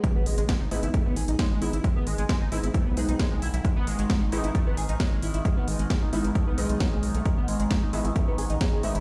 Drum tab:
HH |x-oxx-oxx-oxx-ox|x-oxx-oxx-oxx-ox|x-oxx-oxx-oxx-ox|x-oxx-oxx-oxx-ox|
SD |----o-------o---|----o-------o---|----o-------o---|----o-------o---|
BD |o---o---o---o---|o---o---o---o---|o---o---o---o---|o---o---o---o---|

HH |x-oxx-oxx-oxx-ox|
SD |----o-------o---|
BD |o---o---o---o---|